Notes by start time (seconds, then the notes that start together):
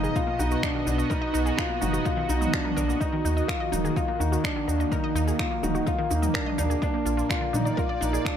Already playing: B2 B3 D#4 G#4 B4 D#5
0.04 F#4 G#4, shaker
0.16 D#4 F4, kick, shaker
0.27 A#3
0.39 B1 D#4 F#4, shaker
0.51 F#4, shaker
0.63 D4 D#4, finger snap, kick, shaker
0.75 D#3
0.87 B1 D4 D#4, shaker
0.98 D#5, shaker
1.10 D#4 A#4, kick, shaker
1.22 D#5
1.34 B1 D#4, shaker
1.46 G#4, shaker
1.57 D#4 F4, finger snap, kick, shaker
1.70 A#3
1.81 F#1 D#4 F#4, mid tom, shaker
1.93 F#4, shaker
2.05 D#4 F4, kick, shaker
2.17 D#3
2.29 B1 D#4, shaker
2.41 D#4, mid tom, shaker
2.53 D4 F4, finger snap, kick, shaker
2.65 A#4, mid tom
2.76 B1 D4 A#4, shaker
2.88 A#3, shaker
3.00 D#3 D#4, kick, shaker
3.13 D#3
3.25 D#2 D#4, shaker
3.33 A#3
3.37 D#5, shaker
3.48 F4 A#4, finger snap, kick, shaker
3.60 D#5
3.72 D#1 D#4, mid tom, shaker
3.85 G#4, shaker
3.96 D#4 F4, kick, shaker
4.08 A#3
4.20 D#2 D#4 F#4, shaker
4.32 F#4, shaker
4.44 D4 D#4, finger snap, kick, shaker
4.56 D#3
4.68 D#2 D4 D#4, shaker
4.80 D#5, shaker
4.91 D#4 A#4, kick, shaker
5.04 D#5
5.15 D#2 D#4, shaker
5.27 G#4, shaker
5.39 D#4 F4, finger snap, kick, shaker
5.51 A#3
5.63 D#1 D#4 F#4, mid tom, shaker
5.75 F#4, shaker
5.86 D#4 F4, kick, shaker
5.98 D#3
6.11 D#2 D#4, shaker
6.22 D#5, mid tom, shaker
6.34 D4 A#4, finger snap, kick, shaker
6.46 D#5, mid tom
6.58 D#2 D4 D#4, shaker
6.70 G#4, shaker
6.82 A#2 D4, kick, shaker
6.94 A#3
7.04 A#1 F4, shaker
7.17 F4, shaker
7.23 D5
7.29 D4 F4, finger snap, kick, shaker
7.41 D3
7.53 A#2 D4 D#4, mid tom, shaker
7.65 D5, shaker
7.77 F4 A#4, kick, shaker
7.89 D5
8.01 A#1 D4 D#4, shaker
8.13 G#4, shaker
8.25 D4, finger snap, kick, shaker